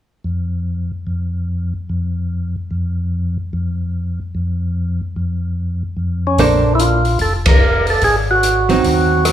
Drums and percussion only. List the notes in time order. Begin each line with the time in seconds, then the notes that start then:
6.38 kick, open hi-hat
6.79 closed hi-hat
7.05 open hi-hat
7.19 kick, open hi-hat
7.46 kick, ride
7.87 open hi-hat
8.01 kick, open hi-hat
8.43 closed hi-hat
8.69 open hi-hat
8.84 kick, open hi-hat
9.25 cross-stick, closed hi-hat